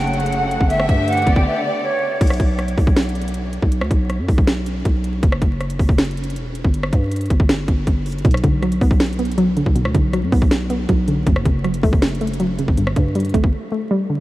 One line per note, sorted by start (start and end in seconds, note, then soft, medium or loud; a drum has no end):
0.00 0.58 F#1 loud
0.00 0.69 C#3 medium
0.00 0.66 F#3 medium
0.00 2.18 A3 medium
0.00 0.66 F#5 medium
0.00 0.21 G5 medium
0.00 closed hi-hat soft
0.07 closed hi-hat medium
0.14 closed hi-hat medium
0.20 0.67 F#5 medium
0.20 closed hi-hat medium
0.26 closed hi-hat medium
0.32 closed hi-hat medium
0.51 closed hi-hat medium
0.61 0.88 G1 loud
0.61 kick medium
0.70 2.19 D3 medium
0.70 2.19 B3 medium
0.70 2.20 G4 medium
0.70 1.23 E5 loud
0.70 0.86 E5 loud
0.70 closed hi-hat medium
0.80 cross-stick loud
0.89 1.25 G2 loud
0.89 1.05 E5 medium
0.89 kick medium
0.89 closed hi-hat medium
1.08 1.34 F#5 loud
1.08 closed hi-hat medium
1.13 closed hi-hat medium
1.17 closed hi-hat medium
1.22 closed hi-hat soft
1.27 1.36 G1 loud
1.27 2.17 D5 medium
1.27 kick loud
1.27 closed hi-hat medium
1.36 1.46 G1 loud
1.36 1.44 G5 medium
1.36 kick loud
1.46 1.62 E5 medium
1.64 1.81 D5 medium
1.83 2.18 C#5 medium
2.21 2.39 B1 loud
2.21 kick loud
2.21 closed hi-hat medium
2.21 crash loud
2.27 cross-stick medium
2.27 closed hi-hat medium
2.34 closed hi-hat medium
2.40 2.76 B1 loud
2.40 kick medium
2.40 closed hi-hat medium
2.59 cross-stick medium
2.59 closed hi-hat soft
2.68 closed hi-hat medium
2.78 3.59 B1 loud
2.78 kick medium
2.78 open hi-hat medium
2.87 kick loud
2.96 snare loud
2.96 closed hi-hat soft
3.03 closed hi-hat soft
3.09 closed hi-hat medium
3.15 closed hi-hat medium
3.21 closed hi-hat medium
3.28 closed hi-hat medium
3.34 closed hi-hat medium
3.53 closed hi-hat medium
3.62 3.83 B1 loud
3.62 kick medium
3.72 closed hi-hat medium
3.81 3.90 D2 loud
3.81 cross-stick loud
3.91 4.20 B1 loud
3.91 kick medium
3.91 closed hi-hat medium
4.10 cross-stick medium
4.10 closed hi-hat medium
4.19 4.28 F#2 loud
4.28 4.83 B1 loud
4.28 kick medium
4.28 open hi-hat medium
4.38 kick loud
4.47 snare loud
4.47 closed hi-hat medium
4.66 closed hi-hat medium
4.85 5.21 B1 loud
4.85 kick medium
4.85 closed hi-hat medium
5.04 closed hi-hat medium
5.23 5.41 F#1 loud
5.23 kick loud
5.23 closed hi-hat medium
5.32 cross-stick loud
5.42 5.78 F#1 loud
5.42 kick medium
5.42 closed hi-hat medium
5.61 cross-stick medium
5.61 closed hi-hat soft
5.70 closed hi-hat medium
5.79 6.38 F#1 loud
5.79 kick medium
5.79 open hi-hat medium
5.89 kick loud
5.98 snare loud
5.98 closed hi-hat soft
6.05 closed hi-hat soft
6.11 closed hi-hat medium
6.17 closed hi-hat medium
6.24 closed hi-hat medium
6.30 closed hi-hat medium
6.36 6.63 E1 loud
6.36 closed hi-hat medium
6.55 closed hi-hat medium
6.64 6.92 G1 loud
6.64 kick medium
6.74 closed hi-hat medium
6.83 cross-stick loud
6.93 7.29 G2 loud
6.93 kick medium
6.93 closed hi-hat medium
7.12 closed hi-hat medium
7.16 closed hi-hat medium
7.21 closed hi-hat medium
7.26 closed hi-hat soft
7.30 7.67 G1 loud
7.30 kick medium
7.30 closed hi-hat medium
7.40 kick loud
7.49 snare loud
7.49 closed hi-hat medium
7.68 7.86 G1 loud
7.68 kick loud
7.68 closed hi-hat medium
7.87 8.07 G1 loud
7.87 kick medium
7.87 closed hi-hat medium
8.06 8.17 F#1 loud
8.06 closed hi-hat soft
8.06 open hi-hat medium
8.12 8.24 G1 medium
8.12 closed hi-hat medium
8.18 closed hi-hat medium
8.25 8.43 B1 loud
8.25 9.19 B2 medium
8.25 kick loud
8.25 closed hi-hat medium
8.31 cross-stick loud
8.31 closed hi-hat medium
8.37 closed hi-hat medium
8.44 8.80 B1 loud
8.44 9.38 D3 medium
8.44 kick medium
8.44 closed hi-hat medium
8.62 9.37 F#3 medium
8.62 cross-stick medium
8.62 closed hi-hat soft
8.72 closed hi-hat medium
8.81 9.63 B1 loud
8.81 9.18 B3 loud
8.81 kick medium
8.81 open hi-hat medium
8.91 kick loud
9.00 snare loud
9.00 closed hi-hat soft
9.06 closed hi-hat soft
9.13 closed hi-hat medium
9.19 10.13 B3 medium
9.19 closed hi-hat medium
9.25 closed hi-hat medium
9.32 closed hi-hat medium
9.38 10.12 F#3 loud
9.38 closed hi-hat medium
9.57 9.93 D3 medium
9.57 closed hi-hat medium
9.66 9.87 B1 loud
9.66 kick medium
9.75 10.70 B2 medium
9.75 closed hi-hat medium
9.85 9.94 D2 loud
9.85 cross-stick loud
9.94 10.24 B1 loud
9.94 10.89 D3 medium
9.94 kick medium
9.94 closed hi-hat medium
10.13 10.88 F#3 medium
10.13 cross-stick medium
10.13 closed hi-hat medium
10.23 10.32 F#2 loud
10.32 10.87 B1 loud
10.32 10.69 B3 loud
10.32 kick medium
10.32 open hi-hat medium
10.42 kick loud
10.51 snare loud
10.51 closed hi-hat medium
10.70 11.27 B3 medium
10.70 closed hi-hat medium
10.89 11.25 B1 loud
10.89 11.27 F#3 loud
10.89 kick medium
10.89 closed hi-hat medium
11.08 11.27 D3 medium
11.08 closed hi-hat medium
11.27 11.45 F#1 loud
11.27 12.21 F#2 medium
11.27 kick loud
11.27 closed hi-hat medium
11.36 cross-stick loud
11.45 11.82 F#1 loud
11.45 12.40 C#3 medium
11.45 kick medium
11.45 closed hi-hat medium
11.64 12.39 F#3 medium
11.64 cross-stick medium
11.64 closed hi-hat soft
11.74 closed hi-hat medium
11.83 11.92 F#1 loud
11.83 12.20 A3 loud
11.83 kick medium
11.83 open hi-hat medium
11.93 12.65 F#1 loud
11.93 kick loud
12.02 snare loud
12.02 closed hi-hat soft
12.08 closed hi-hat soft
12.15 closed hi-hat medium
12.21 12.78 A3 medium
12.21 closed hi-hat medium
12.27 closed hi-hat medium
12.33 closed hi-hat medium
12.40 12.78 F#3 medium
12.40 closed hi-hat medium
12.59 12.78 C#3 medium
12.59 closed hi-hat medium
12.68 12.95 G1 loud
12.68 kick medium
12.77 13.72 G2 medium
12.77 closed hi-hat medium
12.87 cross-stick loud
12.96 13.33 G2 loud
12.96 13.91 D3 medium
12.96 kick medium
12.96 closed hi-hat medium
13.15 13.90 G3 medium
13.15 closed hi-hat medium
13.20 closed hi-hat medium
13.25 closed hi-hat medium
13.29 closed hi-hat soft
13.34 13.43 G1 loud
13.34 13.70 A3 loud
13.34 kick medium
13.34 closed hi-hat medium
13.44 13.53 G1 loud
13.44 kick loud
13.72 14.20 A3 medium
13.91 14.20 G3 loud
14.10 14.20 D3 medium